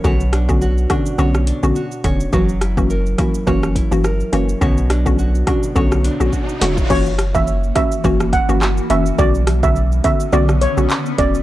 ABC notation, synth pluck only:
X:1
M:4/4
L:1/16
Q:"Swing 16ths" 1/4=105
K:Bm
V:1 name="Synth pluck"
[D,B,CF] z2 [D,B,CF] z2 [D,B,CF] z [D,B,CF]3 [D,B,CF] z2 [D,B,CF] z | [E,^A,CF] z2 [E,A,CF] z2 [E,A,CF] z [E,A,CF]3 [E,A,CF] z2 [E,A,CF] z | [D,B,CF] z2 [D,B,CF] z2 [D,B,CF] z [D,B,CF]3 [D,B,CF] z2 [D,B,CF] z | [E,^A,CF] z2 [E,A,CF] z2 [E,A,CF] z [E,A,CF]3 [E,A,CF] z2 [E,A,CF] z |
[D,B,CF] z2 [D,B,CF] z2 [D,B,CF] z [D,B,CF]3 [D,B,CF] z2 [D,B,CF] z |]